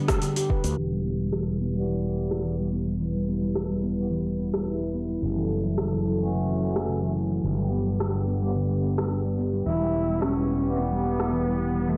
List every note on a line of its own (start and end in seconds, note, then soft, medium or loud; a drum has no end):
0.00 0.21 B3 loud
0.08 0.21 G4 medium
0.08 kick loud
0.08 cross-stick medium
0.08 open hi-hat medium
0.08 shaker medium
0.22 0.35 D3 medium
0.22 open hi-hat medium
0.22 shaker medium
0.36 0.49 G4 loud
0.36 open hi-hat medium
0.36 shaker soft
0.50 0.64 B4 medium
0.50 kick medium
0.64 0.74 D2 medium
0.64 0.76 D3 medium
0.64 open hi-hat soft
0.64 shaker medium
0.78 5.19 E1 medium
0.78 0.91 E3 medium
0.78 5.19 G3 medium
0.78 7.41 E4 medium
0.78 5.19 B4 medium
0.92 1.04 G3 medium
1.06 1.19 B3 medium
1.06 shaker medium
1.20 1.27 G3 medium
1.20 shaker soft
1.33 1.47 E3 medium
1.33 cross-stick medium
1.33 shaker soft
1.48 1.60 G3 medium
1.61 1.74 B3 medium
1.61 shaker medium
1.74 2.54 E3 medium
1.74 2.55 G3 medium
1.74 1.88 G3 medium
1.74 2.56 B3 medium
1.74 shaker soft
1.78 2.56 G4 loud
1.89 2.02 E3 medium
1.89 shaker soft
2.04 2.11 G3 medium
2.04 shaker soft
2.17 2.31 B3 medium
2.17 shaker medium
2.31 2.43 E4 medium
2.31 cross-stick medium
2.31 shaker soft
2.45 2.58 E3 medium
2.45 shaker soft
2.58 2.67 E3 medium
2.58 2.68 G3 medium
2.58 2.72 G3 medium
2.58 2.68 B3 medium
2.58 2.68 G4 medium
2.58 shaker soft
2.73 2.86 B3 medium
2.73 shaker medium
2.88 2.99 G3 medium
2.88 shaker soft
3.00 3.08 E3 medium
3.00 shaker soft
3.15 3.22 G3 medium
3.15 shaker soft
3.28 3.42 B3 medium
3.28 shaker medium
3.43 3.50 G3 medium
3.43 shaker soft
3.55 3.70 E3 medium
3.55 cross-stick medium
3.55 shaker soft
3.70 3.82 G3 medium
3.70 shaker soft
3.83 3.92 B3 medium
3.83 shaker medium
3.97 4.06 E3 medium
3.97 4.07 G3 medium
3.97 4.10 G3 medium
3.97 4.07 B3 medium
3.97 4.07 G4 medium
3.97 shaker soft
4.11 4.24 E3 medium
4.11 shaker soft
4.26 4.33 G3 medium
4.26 shaker soft
4.39 4.53 B3 medium
4.39 shaker medium
4.53 4.61 G3 medium
4.53 cross-stick medium
4.53 shaker soft
4.66 4.80 E4 medium
4.66 shaker soft
4.81 4.93 G3 medium
4.81 shaker soft
4.94 5.03 B3 medium
4.94 shaker medium
5.09 5.21 G3 medium
5.09 shaker soft
5.22 7.42 F#1 medium
5.22 5.35 C#3 medium
5.22 7.42 F#3 medium
5.22 7.42 A4 medium
5.22 shaker soft
5.36 5.48 E3 medium
5.36 shaker soft
5.50 5.64 F#3 medium
5.50 shaker medium
5.64 5.72 E3 medium
5.64 shaker soft
5.78 5.92 C#3 medium
5.78 cross-stick medium
5.78 shaker soft
5.92 6.05 E3 medium
5.92 shaker soft
6.06 6.19 F#3 medium
6.06 shaker medium
6.18 6.99 E3 medium
6.18 6.32 E3 medium
6.18 7.00 A3 medium
6.18 7.00 C#4 medium
6.18 shaker soft
6.22 7.01 F#4 loud
6.33 6.46 C#3 medium
6.33 shaker soft
6.48 6.55 E3 medium
6.48 shaker soft
6.61 6.75 F#3 medium
6.61 shaker medium
6.75 6.87 A3 medium
6.75 cross-stick medium
6.75 shaker soft
6.89 7.03 C#3 medium
6.89 shaker soft
7.02 7.12 E3 medium
7.02 7.16 E3 medium
7.02 7.12 A3 medium
7.02 7.12 C#4 medium
7.02 7.13 F#4 medium
7.02 shaker soft
7.16 7.30 F#3 medium
7.16 shaker medium
7.31 7.43 E3 medium
7.31 shaker soft
7.44 9.64 G1 medium
7.44 7.53 D3 medium
7.44 9.64 D3 medium
7.44 11.97 B3 medium
7.44 11.97 G4 medium
7.44 shaker soft
7.58 7.66 G3 medium
7.58 shaker soft
7.72 7.86 B3 medium
7.72 shaker medium
7.86 7.94 G3 medium
7.86 shaker soft
8.00 8.14 D3 medium
8.00 cross-stick medium
8.00 shaker soft
8.15 8.26 G3 medium
8.15 shaker soft
8.28 8.36 B3 medium
8.28 shaker medium
8.42 8.51 D3 medium
8.42 8.54 G3 medium
8.42 8.51 G3 medium
8.42 8.52 B3 medium
8.42 8.52 G4 medium
8.42 shaker soft
8.55 8.68 D3 medium
8.55 shaker soft
8.70 8.77 G3 medium
8.70 shaker soft
8.83 8.97 B3 medium
8.83 shaker medium
8.98 9.05 G3 medium
8.98 cross-stick medium
8.98 shaker soft
9.11 9.25 D4 medium
9.11 shaker soft
9.25 9.37 G3 medium
9.25 shaker soft
9.39 9.47 B3 medium
9.39 shaker medium
9.53 9.65 G3 medium
9.53 shaker soft
9.66 11.97 E1 medium
9.66 9.80 E3 medium
9.66 11.97 E3 medium
9.66 10.23 E4 loud
9.66 shaker soft
9.81 9.93 G3 medium
9.81 shaker soft
9.94 10.07 E3 medium
9.94 shaker medium
10.09 10.16 G3 medium
10.09 shaker soft
10.21 10.36 E3 medium
10.21 10.80 C#4 medium
10.21 cross-stick medium
10.21 shaker soft
10.37 10.49 G3 medium
10.37 shaker soft
10.50 10.63 B3 medium
10.50 shaker medium
10.63 11.44 E3 medium
10.63 11.44 G3 medium
10.63 10.76 G3 medium
10.63 11.45 B3 medium
10.63 11.45 G4 loud
10.63 shaker soft
10.78 10.91 E3 medium
10.78 11.91 B3 medium
10.78 shaker soft
10.92 11.00 G3 medium
10.92 shaker soft
11.05 11.19 B3 medium
11.05 shaker medium
11.20 11.32 E4 medium
11.20 cross-stick medium
11.20 shaker soft
11.33 11.47 E3 medium
11.33 shaker soft
11.47 11.56 E3 medium
11.47 11.60 G3 medium
11.47 11.57 G3 medium
11.47 11.57 B3 medium
11.47 11.57 G4 medium
11.47 shaker soft
11.61 11.74 B3 medium
11.61 shaker medium
11.75 11.87 G3 medium
11.75 shaker soft
11.88 11.97 E3 medium
11.88 11.97 A3 medium
11.88 shaker soft